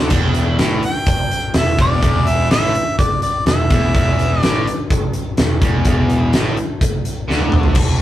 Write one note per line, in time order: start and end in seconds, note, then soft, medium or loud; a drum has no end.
0.00 0.10 D3 medium
0.10 0.56 E1 medium
0.10 0.58 E2 loud
0.10 kick loud
0.10 closed hi-hat medium
0.10 crash medium
0.34 closed hi-hat medium
0.58 0.81 A1 medium
0.58 0.82 A2 medium
0.58 snare medium
0.58 closed hi-hat medium
0.83 1.52 G5 loud
0.83 closed hi-hat soft
1.06 kick loud
1.06 closed hi-hat medium
1.31 closed hi-hat medium
1.54 1.77 E1 medium
1.54 1.74 E2 medium
1.54 snare loud
1.54 closed hi-hat medium
1.58 1.79 E5 medium
1.78 2.01 E1 medium
1.78 2.00 E2 medium
1.78 2.29 D5 medium
1.78 kick loud
1.78 closed hi-hat medium
2.01 2.48 E1 medium
2.01 2.49 E2 loud
2.01 kick loud
2.01 closed hi-hat medium
2.27 2.50 E5 medium
2.27 closed hi-hat medium
2.50 2.73 A1 medium
2.50 2.74 A2 medium
2.50 2.96 E5 medium
2.50 snare loud
2.50 closed hi-hat medium
2.75 closed hi-hat medium
2.99 3.21 D5 medium
2.99 kick loud
2.99 closed hi-hat medium
3.22 3.45 D5 medium
3.22 closed hi-hat medium
3.46 3.69 E1 medium
3.46 3.66 E2 medium
3.46 4.41 E5 medium
3.46 snare medium
3.46 closed hi-hat medium
3.70 3.93 E1 medium
3.70 3.93 E2 medium
3.70 kick loud
3.70 closed hi-hat medium
3.94 4.39 E1 medium
3.94 4.41 E2 loud
3.94 kick loud
3.94 closed hi-hat medium
4.19 closed hi-hat medium
4.41 4.65 A1 medium
4.41 4.66 A2 medium
4.41 4.86 D5 medium
4.41 snare loud
4.41 closed hi-hat medium
4.67 closed hi-hat medium
4.90 kick loud
4.90 closed hi-hat medium
5.13 closed hi-hat medium
5.37 5.61 E1 medium
5.37 5.57 E2 medium
5.37 snare loud
5.37 closed hi-hat medium
5.61 5.84 E1 medium
5.61 5.85 E2 medium
5.61 kick loud
5.61 closed hi-hat medium
5.85 6.30 E1 medium
5.85 6.33 E2 medium
5.85 kick loud
5.85 closed hi-hat medium
6.10 closed hi-hat medium
6.33 6.56 A1 medium
6.33 6.57 A2 medium
6.33 snare loud
6.33 closed hi-hat medium
6.57 closed hi-hat medium
6.81 kick loud
6.81 closed hi-hat medium
7.05 closed hi-hat medium
7.28 7.78 D2 medium
7.28 7.75 D3 medium
7.28 snare medium
7.41 high tom medium
7.52 mid tom medium
7.63 floor tom medium
7.75 7.98 E1 medium
7.75 kick loud
7.75 crash loud